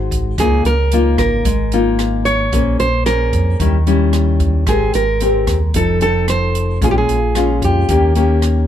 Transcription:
Already playing: G#1 G#3 D#4 F#4 C5
0.11 kick, closed hi-hat
0.38 C#2 C#3 A#3 D#4 F4 G#4, kick, cross-stick, closed hi-hat
0.65 C#2 A#4, closed hi-hat
0.92 A#3 D#4 F4, closed hi-hat
1.18 G#1 A#4, kick, cross-stick, closed hi-hat
1.45 G#1 G#3, kick, closed hi-hat
1.72 A#3 D#4 F4, closed hi-hat
1.99 cross-stick, closed hi-hat
2.25 C#5, closed hi-hat
2.52 A#1 A#3 C#4 G#4 C5, kick, closed hi-hat
2.79 A#1 C5, closed hi-hat
3.06 C#4 G#4 A#4 C5, cross-stick, closed hi-hat
3.33 F2, kick, closed hi-hat
3.60 D#2 D#3 G3 C#4 E4, kick, closed hi-hat
3.87 G3 C#4 E4, closed hi-hat
4.13 cross-stick, closed hi-hat
4.40 kick, closed hi-hat
4.67 G#1 G#3 C4 G4 G#4 A#4, kick, cross-stick, closed hi-hat
4.94 G#1 A#4, closed hi-hat
5.20 C4 G4 A#4, closed hi-hat
5.47 D#2, kick, cross-stick, closed hi-hat
5.74 F1 F3 C4 D#4 A4, kick, closed hi-hat
6.01 C4 D#4 A4, closed hi-hat
6.28 C5, cross-stick, closed hi-hat
6.55 closed hi-hat
6.81 A#1 A#2 G#3 C#4 F4 G#4, kick, closed hi-hat
6.91 G4
6.98 G#4
7.09 A#1, closed hi-hat
7.35 G#3 C#4 F4, cross-stick, closed hi-hat
7.62 F2 G4, kick, closed hi-hat
7.89 D#2 D#3 A#3 C#4 G4, kick, closed hi-hat
8.15 A#3 C#4 G4, closed hi-hat
8.42 cross-stick, closed hi-hat

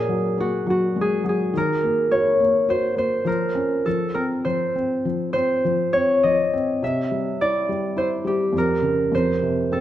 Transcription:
Already playing: A#2 G#4 A#4 C#5 D#5
0.09 F#3
0.38 A#3 F#4
0.67 F#3 F#4
0.96 G#3
1.01 G#4
1.24 F#3
1.29 G#4
1.54 D#3 A#4
1.84 A#3
2.11 F#4 C#5
2.40 A#3
2.69 F#4 C5
2.97 A#3 C5
3.25 F3 A#4
3.55 C#4
3.86 F3 A4
4.14 C4 A#4
4.45 F3 C5
4.76 C4
5.05 F3
5.33 C4 C5
5.65 F3
5.93 C4 C#5
6.23 F3 D#5
6.53 C4
6.83 C3 E5
7.11 G3
7.41 E4 D5
7.69 G3
7.96 E4 C5
8.24 G3 G4
8.53 F2
8.58 A#4
8.82 C#3
9.12 F2 C5
9.42 C3
9.72 C4 A4

